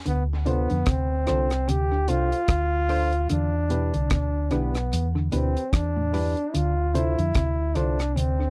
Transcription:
0.06 0.66 D2 loud
0.06 0.26 D3 medium
0.06 0.23 B3 medium
0.06 closed hi-hat medium
0.46 0.66 C3 medium
0.46 0.91 B3 medium
0.46 0.67 D4 medium
0.46 0.67 F4 medium
0.46 0.68 A4 medium
0.46 0.68 C5 medium
0.46 closed hi-hat medium
0.70 0.86 F2 medium
0.70 0.84 D3 medium
0.70 closed hi-hat soft
0.86 1.25 D2 medium
0.86 1.07 C3 medium
0.86 1.71 C4 medium
0.86 kick loud
0.86 cross-stick loud
0.86 closed hi-hat medium
1.27 1.66 C2 medium
1.27 1.47 D3 medium
1.27 1.48 D4 medium
1.27 1.49 F4 medium
1.27 1.49 A4 medium
1.27 1.49 C5 loud
1.27 cross-stick medium
1.27 closed hi-hat medium
1.50 cross-stick medium
1.50 closed hi-hat soft
1.68 2.06 D2 loud
1.68 1.88 C3 medium
1.68 2.12 G4 loud
1.68 closed hi-hat loud
1.92 2.06 D3 medium
2.08 2.31 C2 medium
2.08 2.28 C3 medium
2.08 2.29 D4 medium
2.08 2.29 F4 medium
2.08 3.31 F4 loud
2.08 2.30 A4 medium
2.08 2.30 C5 medium
2.08 closed hi-hat medium
2.32 2.39 A4 soft
2.32 2.39 C5 soft
2.32 closed hi-hat soft
2.48 3.26 D2 medium
2.48 kick loud
2.48 cross-stick loud
2.48 closed hi-hat medium
2.89 3.11 D4 medium
2.89 3.11 F4 medium
2.89 3.11 A4 medium
2.89 3.11 C5 loud
2.89 open hi-hat medium
3.12 closed hi-hat soft
3.30 3.91 E2 loud
3.30 3.50 D3 medium
3.30 4.08 D4 loud
3.30 closed hi-hat medium
3.70 3.90 B2 medium
3.70 3.91 D4 medium
3.70 3.92 E4 medium
3.70 3.92 G4 medium
3.70 3.92 B4 loud
3.70 closed hi-hat medium
3.94 4.11 C2 medium
3.94 4.08 D3 medium
3.94 closed hi-hat soft
4.10 4.49 D2 medium
4.10 4.31 B2 medium
4.10 4.54 D4 medium
4.10 kick loud
4.10 cross-stick loud
4.10 closed hi-hat medium
4.51 4.90 B1 medium
4.51 4.71 D3 medium
4.51 5.08 B3 medium
4.51 4.73 D4 medium
4.51 4.73 E4 medium
4.51 4.73 G4 medium
4.51 4.73 B4 loud
4.51 closed hi-hat medium
4.75 cross-stick medium
4.75 closed hi-hat soft
4.93 5.30 E2 loud
4.93 closed hi-hat loud
5.15 5.30 D3 medium
5.32 5.55 D2 medium
5.32 5.52 B2 medium
5.32 5.75 C4 medium
5.32 5.54 D4 medium
5.32 5.54 E4 medium
5.32 5.54 G4 medium
5.32 5.54 B4 loud
5.32 closed hi-hat medium
5.56 5.63 G4 soft
5.56 5.63 B4 soft
5.56 closed hi-hat medium
5.73 6.33 E2 medium
5.73 6.57 D4 medium
5.73 kick loud
5.73 cross-stick loud
5.73 closed hi-hat medium
5.96 6.11 A2 medium
6.13 6.33 G2 medium
6.13 6.35 D4 medium
6.13 6.35 E4 medium
6.13 6.35 G4 medium
6.13 6.35 B4 loud
6.13 open hi-hat medium
6.37 closed hi-hat soft
6.54 7.15 D2 medium
6.54 6.74 D3 medium
6.54 6.96 F4 loud
6.54 closed hi-hat medium
6.94 7.15 C3 medium
6.94 7.16 D4 medium
6.94 7.78 E4 loud
6.94 7.16 F4 medium
6.94 7.16 A4 medium
6.94 7.16 C5 loud
6.94 closed hi-hat medium
7.18 7.34 F2 medium
7.18 7.33 D3 medium
7.18 closed hi-hat soft
7.35 7.73 D2 medium
7.35 7.55 C3 medium
7.35 kick loud
7.35 cross-stick loud
7.35 closed hi-hat medium
7.75 8.14 C2 medium
7.75 7.95 D3 medium
7.75 7.97 D4 medium
7.75 8.19 D4 medium
7.75 7.97 F4 medium
7.75 7.97 A4 medium
7.75 7.98 C5 loud
7.75 closed hi-hat medium
7.99 cross-stick medium
7.99 closed hi-hat medium
8.16 8.50 D2 loud
8.16 8.36 C3 medium
8.16 8.50 C4 medium
8.16 closed hi-hat loud
8.39 8.50 D3 medium

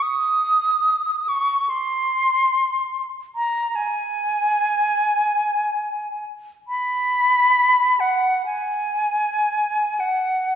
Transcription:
0.02 1.30 D#6 medium
1.29 1.71 C#6 medium
1.69 3.10 C6 medium
3.35 3.77 A#5 medium
3.75 6.24 G#5 medium
6.68 8.02 B5 medium
8.00 8.45 F#5 medium
8.46 10.01 G#5 medium
10.00 10.55 F#5 medium

